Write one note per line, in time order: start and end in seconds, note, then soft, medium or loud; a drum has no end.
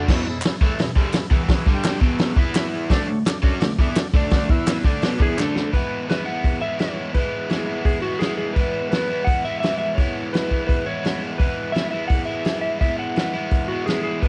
0.07 0.25 E2 medium
0.07 0.25 B2 loud
0.07 0.26 E3 medium
0.07 kick loud
0.07 snare loud
0.07 crash loud
0.13 0.22 G#4 loud
0.13 0.22 B4 medium
0.13 0.22 E5 loud
0.26 0.40 E2 medium
0.26 0.40 B2 medium
0.26 0.39 G#4 medium
0.26 0.39 B4 medium
0.30 0.39 E5 medium
0.42 0.56 G#4 medium
0.42 snare loud
0.42 clap loud
0.42 open hi-hat medium
0.46 0.56 B4 medium
0.46 0.56 E5 medium
0.61 0.78 A2 loud
0.61 0.79 E3 loud
0.61 0.79 A3 loud
0.61 kick loud
0.65 0.74 G#4 medium
0.65 0.75 B4 medium
0.65 0.75 E5 medium
0.78 0.93 E2 medium
0.78 0.93 B2 medium
0.78 0.91 G#4 loud
0.78 0.91 B4 loud
0.78 0.91 E5 loud
0.78 snare loud
0.78 open hi-hat medium
0.95 1.13 G2 medium
0.95 1.14 D3 medium
0.95 1.14 G3 medium
0.95 1.09 G#4 medium
0.95 1.09 B4 medium
0.95 kick loud
1.00 1.09 E5 medium
1.13 1.26 G#4 medium
1.13 1.26 B4 medium
1.13 1.26 E5 medium
1.13 muted overdriven electric guitar stroke medium
1.13 snare loud
1.13 clap medium
1.13 open hi-hat medium
1.30 1.66 E2 medium
1.30 1.67 B2 loud
1.30 1.67 E3 loud
1.30 1.43 G#4 medium
1.30 1.43 B4 medium
1.30 1.43 E5 medium
1.30 kick loud
1.48 kick loud
1.48 snare loud
1.48 open hi-hat medium
1.54 1.63 G#4 loud
1.54 1.63 B4 medium
1.54 1.63 E5 loud
1.66 2.00 G2 loud
1.66 2.01 D3 loud
1.66 2.02 G3 loud
1.66 kick loud
1.74 1.99 G4 loud
1.74 1.99 D5 medium
1.74 1.99 G5 loud
1.83 snare loud
1.83 clap medium
1.83 open hi-hat medium
2.00 2.36 E2 loud
2.00 2.36 B2 loud
2.00 2.36 E3 loud
2.00 kick loud
2.06 2.33 G#4 medium
2.06 2.33 B4 medium
2.06 2.32 E5 medium
2.18 snare loud
2.18 open hi-hat medium
2.36 2.89 E3 medium
2.36 2.91 B3 medium
2.36 2.91 E4 loud
2.36 kick loud
2.41 2.51 G#4 medium
2.41 2.51 B4 medium
2.41 2.51 E5 medium
2.54 2.67 G#4 medium
2.54 2.68 B4 medium
2.54 2.67 E5 medium
2.54 snare loud
2.54 clap medium
2.54 open hi-hat medium
2.74 2.85 G#4 medium
2.74 2.85 B4 medium
2.74 2.85 E5 medium
2.90 3.07 D3 loud
2.90 3.07 A3 loud
2.90 3.02 D4 loud
2.90 3.09 D4 loud
2.90 3.02 A4 loud
2.90 3.02 D5 loud
2.90 kick medium
2.90 snare loud
2.90 open hi-hat medium
3.06 3.22 D3 medium
3.06 3.23 A3 medium
3.06 3.18 D4 medium
3.06 3.19 A4 medium
3.06 3.19 C#5 loud
3.25 3.37 D4 medium
3.25 3.38 A4 medium
3.25 3.37 D5 loud
3.25 snare loud
3.25 clap loud
3.25 open hi-hat medium
3.43 3.61 F#3 loud
3.43 3.61 C#4 loud
3.43 3.55 D4 medium
3.43 3.61 F#4 loud
3.43 3.55 A4 medium
3.43 3.56 D5 medium
3.43 kick loud
3.60 3.76 D3 medium
3.60 3.76 A3 medium
3.60 3.72 D4 loud
3.60 3.73 A4 loud
3.60 3.72 D5 loud
3.60 snare loud
3.60 open hi-hat medium
3.79 3.96 E3 medium
3.79 3.97 B3 medium
3.79 3.90 D4 medium
3.79 3.97 E4 loud
3.79 3.91 A4 medium
3.79 3.91 D5 medium
3.79 kick loud
3.95 4.08 D4 medium
3.95 4.08 A4 medium
3.95 4.08 D5 medium
3.95 muted overdriven electric guitar stroke medium
3.95 snare loud
3.95 clap loud
3.95 open hi-hat medium
4.14 4.50 D3 medium
4.14 4.52 A3 loud
4.14 4.26 D4 medium
4.14 4.53 D4 loud
4.14 4.26 A4 medium
4.14 4.26 D5 loud
4.14 kick loud
4.30 4.44 D4 loud
4.30 4.44 A4 loud
4.30 4.44 D5 loud
4.30 kick loud
4.30 snare loud
4.30 open hi-hat medium
4.49 4.84 E3 loud
4.49 4.85 B3 loud
4.49 4.78 E4 medium
4.49 4.86 E4 loud
4.49 4.79 B4 medium
4.49 4.78 E5 loud
4.49 kick loud
4.66 snare loud
4.66 clap loud
4.66 open hi-hat medium
4.84 5.02 D3 loud
4.84 5.03 A3 loud
4.84 5.13 D4 medium
4.84 5.03 D4 loud
4.84 5.14 A4 medium
4.84 5.13 D5 medium
4.84 kick loud
5.02 5.19 B2 medium
5.02 5.21 F#3 loud
5.02 5.20 B3 loud
5.02 snare loud
5.02 open hi-hat medium
5.18 5.37 E3 medium
5.18 5.38 B3 loud
5.18 5.30 D4 medium
5.18 5.31 A4 medium
5.18 5.30 D5 medium
5.18 kick loud
5.22 5.38 E4 medium
5.22 5.39 G#4 medium
5.36 5.72 D3 loud
5.36 5.73 A3 loud
5.36 5.48 D4 medium
5.36 5.74 D4 loud
5.36 5.49 A4 medium
5.36 5.49 D5 medium
5.36 snare medium
5.36 clap medium
5.43 5.73 A4 loud
5.53 5.65 D4 medium
5.53 5.66 A4 medium
5.53 5.66 B4 medium
5.53 snare medium
5.72 6.07 E3 medium
5.72 6.09 G#3 medium
5.72 6.11 B3 loud
5.72 6.08 B4 loud
5.72 kick medium
5.72 open hi-hat soft
5.77 6.12 E4 medium
6.08 6.78 E3 medium
6.08 6.29 G#3 medium
6.08 6.27 B3 medium
6.08 6.27 B4 medium
6.08 snare loud
6.08 open hi-hat soft
6.12 6.24 E4 medium
6.25 6.64 B3 medium
6.25 6.61 E4 medium
6.25 6.61 F#5 medium
6.30 6.66 G#3 medium
6.44 kick loud
6.44 open hi-hat soft
6.62 6.82 B3 medium
6.62 6.83 E4 medium
6.62 6.80 E5 medium
6.66 6.80 G#3 medium
6.79 7.14 E3 medium
6.79 7.16 G#3 medium
6.79 7.18 B3 medium
6.79 7.14 C#5 loud
6.79 snare loud
6.79 open hi-hat medium
6.83 7.19 E4 loud
7.14 7.49 E3 medium
7.14 7.51 G#3 loud
7.14 7.51 B4 loud
7.14 kick medium
7.14 open hi-hat soft
7.18 7.53 B3 loud
7.18 7.54 E4 loud
7.49 8.20 E3 medium
7.49 7.71 G#3 medium
7.49 7.84 G#4 medium
7.49 snare loud
7.49 open hi-hat soft
7.54 7.68 B3 medium
7.54 7.66 E4 medium
7.66 8.05 B3 medium
7.66 8.02 E4 medium
7.71 8.07 G#3 medium
7.85 8.02 G#4 medium
7.85 kick loud
7.85 open hi-hat soft
8.02 8.24 B3 medium
8.02 8.25 E4 medium
8.02 8.21 F#4 medium
8.07 8.22 G#3 medium
8.19 8.56 E3 medium
8.19 8.57 G#3 loud
8.19 8.36 G#4 medium
8.19 snare medium
8.19 open hi-hat soft
8.24 8.59 B3 medium
8.24 8.61 E4 loud
8.37 8.56 G#4 medium
8.53 8.90 E3 medium
8.53 8.90 B4 medium
8.53 kick loud
8.53 open hi-hat soft
8.58 8.92 G#3 medium
8.58 8.94 B3 loud
8.58 8.95 E4 loud
8.91 9.62 E3 medium
8.91 9.14 G#3 medium
8.91 9.12 B3 medium
8.91 9.28 B4 loud
8.91 snare loud
8.91 open hi-hat soft
8.95 9.09 E4 medium
9.09 9.47 B3 medium
9.09 9.44 E4 medium
9.14 9.49 G#3 medium
9.24 9.42 F#5 loud
9.24 kick loud
9.24 open hi-hat medium
9.45 9.65 B3 medium
9.45 9.66 E4 medium
9.45 9.59 E5 medium
9.50 9.64 G#3 medium
9.60 9.97 E3 medium
9.60 9.99 G#3 loud
9.60 9.77 E5 loud
9.60 snare loud
9.60 open hi-hat medium
9.65 10.00 B3 loud
9.65 10.02 E4 medium
9.78 9.98 E5 medium
9.95 10.32 E3 medium
9.95 10.32 C#5 loud
9.95 kick loud
9.95 open hi-hat soft
9.99 10.34 G#3 medium
9.99 10.36 B3 loud
9.99 10.38 E4 medium
10.33 11.02 E3 medium
10.33 10.55 G#3 medium
10.33 10.53 B3 medium
10.33 10.66 B4 medium
10.33 snare loud
10.33 open hi-hat soft
10.38 10.50 E4 medium
10.50 10.88 B3 medium
10.50 10.85 E4 medium
10.50 kick medium
10.56 10.90 G#3 medium
10.67 10.86 B4 medium
10.67 kick loud
10.67 open hi-hat soft
10.85 11.06 B3 medium
10.85 11.07 E4 medium
10.85 11.22 C#5 loud
10.90 11.04 G#3 soft
11.03 11.38 E3 medium
11.03 11.40 G#3 loud
11.03 11.41 B3 loud
11.03 snare loud
11.03 open hi-hat soft
11.08 11.42 E4 loud
11.38 11.72 E3 medium
11.38 11.75 G#3 medium
11.38 11.75 B3 medium
11.38 11.72 B4 medium
11.38 kick loud
11.38 open hi-hat soft
11.43 11.77 E4 medium
11.72 12.44 E3 medium
11.72 11.95 G#3 medium
11.72 11.93 B3 medium
11.72 11.90 E5 medium
11.72 snare loud
11.72 open hi-hat soft
11.78 11.90 E4 medium
11.90 12.29 B3 medium
11.90 12.26 E4 medium
11.90 12.07 E5 medium
11.96 12.31 G#3 medium
12.08 12.25 F#5 medium
12.08 kick loud
12.08 open hi-hat medium
12.25 12.47 B3 medium
12.25 12.49 E4 medium
12.25 12.60 E5 medium
12.31 12.46 G#3 medium
12.44 12.79 E3 medium
12.44 12.81 G#3 loud
12.44 12.82 B3 medium
12.44 snare loud
12.44 open hi-hat medium
12.49 12.84 E4 loud
12.61 12.80 E5 medium
12.80 13.15 E3 medium
12.80 13.17 G#3 medium
12.80 13.18 B3 medium
12.80 12.99 E5 loud
12.80 kick medium
12.80 open hi-hat soft
12.84 13.20 E4 medium
12.99 13.71 F#5 medium
13.15 13.86 E3 medium
13.15 13.38 G#3 medium
13.15 13.36 B3 medium
13.15 snare loud
13.15 open hi-hat soft
13.20 13.33 E4 medium
13.33 13.71 B3 medium
13.33 13.69 E4 medium
13.38 13.73 G#3 medium
13.51 kick loud
13.51 open hi-hat soft
13.68 13.90 B3 medium
13.68 13.91 E4 medium
13.68 13.87 F#4 medium
13.74 13.88 G#3 medium
13.86 14.21 E3 loud
13.86 14.23 G#3 loud
13.86 14.02 G#4 medium
13.86 snare medium
13.86 open hi-hat soft
13.90 14.24 B3 loud
13.90 14.26 E4 loud
14.03 14.20 G#4 medium
14.21 14.28 E3 medium
14.21 14.28 G#3 medium
14.21 14.28 B3 medium
14.21 14.28 B4 medium
14.21 kick medium
14.21 open hi-hat soft